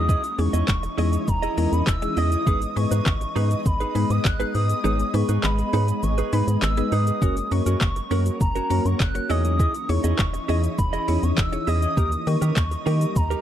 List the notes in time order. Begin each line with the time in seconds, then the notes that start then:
Already playing: E2 E3 G#3 C#4 D#4 E4 G#4 D#5 D#6, downlifter
0.08 E4 G#4 D#5, kick, shaker
0.24 muted clean electric guitar stroke, closed hi-hat, shaker
0.38 E2 G#3 C#4 D#4 E4 G#4 C#6, muted clean electric guitar stroke, open hi-hat, shaker
0.53 E2 E4 G#4 D#5, closed hi-hat, shaker
0.68 E1, kick, snare, clap, shaker
0.83 muted clean electric guitar stroke, closed hi-hat, shaker
0.98 E2 G#3 C#4 D#4 E4 G#4 D#5, open hi-hat, shaker
1.13 muted clean electric guitar stroke, closed hi-hat, shaker
1.28 E1 A#5, muted clean electric guitar stroke, kick, shaker
1.42 E4 G#4 D#5, closed hi-hat, shaker
1.57 E2 G#3 C#4 D#4 E4 G#4 A#4 D#5, open hi-hat, shaker
1.72 E2 B5, closed hi-hat, shaker
1.86 E1 E6, muted clean electric guitar stroke, kick, snare, clap, shaker
2.02 G#3 C#4 D#4 E4 G#4, muted clean electric guitar stroke, closed hi-hat, shaker
2.17 E2 E4 G#4 D#5 D#6, open hi-hat, shaker
2.32 E4 G#4 D#5, closed hi-hat, shaker
2.46 G#1 G#3 B3 D#4 G#4 B4, kick, shaker
2.61 muted clean electric guitar stroke, closed hi-hat, shaker
2.76 G#2 G#3 B3 D#4 G#4 B4 C#6, muted clean electric guitar stroke, open hi-hat, shaker
2.91 G#2 D#4 G#4 B4, closed hi-hat, shaker
3.06 G#1, kick, snare, clap, shaker
3.21 muted clean electric guitar stroke, closed hi-hat, shaker
3.35 G#2 G#3 B3 D#4 G#4 B4, open hi-hat, shaker
3.51 muted clean electric guitar stroke, closed hi-hat, shaker
3.66 G#1 B5, muted clean electric guitar stroke, kick, shaker
3.80 D#4 G#4 B4, closed hi-hat, shaker
3.95 G#2 G#3 B3 D#4 G#4 B4, open hi-hat, shaker
4.10 G#2 D#6, closed hi-hat, shaker
4.24 G#1 F#6, muted clean electric guitar stroke, kick, snare, clap, shaker
4.39 G#3 B3 D#4 G#4 B4, closed hi-hat, shaker
4.54 G#2 D#4 G#4 B4 D#6, open hi-hat, shaker
4.69 muted clean electric guitar stroke, closed hi-hat, shaker
4.84 G#1 G#3 B3 D#4 G#4 B4 C#5, shaker
4.99 muted clean electric guitar stroke, closed hi-hat, shaker
5.14 G#2 G#3 B3 D#4 G#4 B4 C#6, muted clean electric guitar stroke, open hi-hat, shaker
5.29 G#2 D#4 G#4 B4, closed hi-hat, shaker
5.43 G#1 B5, snare, clap, shaker
5.59 muted clean electric guitar stroke, closed hi-hat, shaker
5.73 G#2 G#3 B3 D#4 G#4 B4 C#5, open hi-hat, shaker
5.88 muted clean electric guitar stroke, closed hi-hat, shaker
6.03 G#1 C#6, muted clean electric guitar stroke, shaker
6.18 D#4 G#4 B4, closed hi-hat, shaker
6.33 G#2 G#3 B3 D#4 G#4 B4 B5, open hi-hat, shaker
6.48 G#2, muted clean electric guitar stroke, closed hi-hat, shaker
6.62 G#1 E6, muted clean electric guitar stroke, snare, clap, shaker
6.77 G#3 B3 D#4 G#4 B4, muted clean electric guitar stroke, closed hi-hat, shaker
6.92 G#2 D#4 G#4 B4 D#6, open hi-hat, shaker
7.07 D#4 G#4 B4, closed hi-hat, shaker
7.22 F#1 F#3 A#3 C#4 F#4 A#4 C#5, kick, shaker
7.37 muted clean electric guitar stroke, closed hi-hat, shaker
7.51 F#2 A#3 C#4 F#4 A#4 C#5 C#6, muted clean electric guitar stroke, open hi-hat, shaker
7.66 F#2 C#4 F#4 A#4, closed hi-hat, shaker
7.80 F#1, kick, snare, clap, shaker
7.96 muted clean electric guitar stroke, closed hi-hat, shaker
8.11 F#2 A#3 C#4 F#4 A#4 C#5, open hi-hat, shaker
8.26 muted clean electric guitar stroke, closed hi-hat, shaker
8.41 F#1 A#5, muted clean electric guitar stroke, kick, shaker
8.55 C#4 F#4 A#4, closed hi-hat, shaker
8.70 F#2 A#3 C#4 F#4 A#4 C#5, open hi-hat, shaker
8.85 F#2 C#6, muted clean electric guitar stroke, closed hi-hat, shaker
9.00 F#1 F#6, muted clean electric guitar stroke, kick, snare, clap, shaker
9.15 A#3 C#4 F#4 A#4 C#5, muted clean electric guitar stroke, closed hi-hat, shaker
9.30 E2 E3 C#4 D#4 E4 G#4 C#5 D#5 D#6, open hi-hat, shaker
9.44 E4 G#4 D#5, closed hi-hat, shaker
9.59 E4 G#4 D#5, kick, shaker
9.74 muted clean electric guitar stroke, closed hi-hat, shaker
9.89 E2 C#4 D#4 E4 G#4 C#5 C#6, muted clean electric guitar stroke, open hi-hat, shaker
10.04 E2 E4 G#4 D#5, closed hi-hat, shaker
10.18 E1, kick, snare, clap, shaker
10.34 muted clean electric guitar stroke, closed hi-hat, shaker
10.48 E2 C#4 D#4 E4 G#4 D#5, open hi-hat, shaker
10.63 muted clean electric guitar stroke, closed hi-hat, shaker
10.78 E1 B5, muted clean electric guitar stroke, kick, shaker
10.93 E4 G#4 D#5, closed hi-hat, shaker
11.08 E2 C#4 D#4 E4 G#4 C#5 D#5, open hi-hat, shaker
11.23 E2 C#6, closed hi-hat, shaker
11.37 E1 E6, muted clean electric guitar stroke, kick, snare, clap, shaker
11.52 C#4 D#4 E4 G#4 C#5, muted clean electric guitar stroke, closed hi-hat, shaker
11.67 E2 E4 G#4 D#5 D#6, open hi-hat, shaker
11.82 E4 G#4 D#5, closed hi-hat, shaker
11.97 D#2 G3 A#3 D#4 G4 A#4 D#5, kick, shaker
12.12 muted clean electric guitar stroke, closed hi-hat, shaker
12.27 D#3 A#3 D#4 G4 A#4 D#5 C#6, muted clean electric guitar stroke, open hi-hat, shaker
12.41 D#3 D#4 G4 A#4, closed hi-hat, shaker
12.56 D#2, kick, snare, clap, shaker
12.71 muted clean electric guitar stroke, closed hi-hat, shaker
12.86 D#3 A#3 D#4 G4 A#4 D#5, open hi-hat, shaker
13.01 muted clean electric guitar stroke, closed hi-hat, shaker
13.16 D#2 A#5, muted clean electric guitar stroke, kick, shaker
13.30 D#4 G4 A#4, closed hi-hat, shaker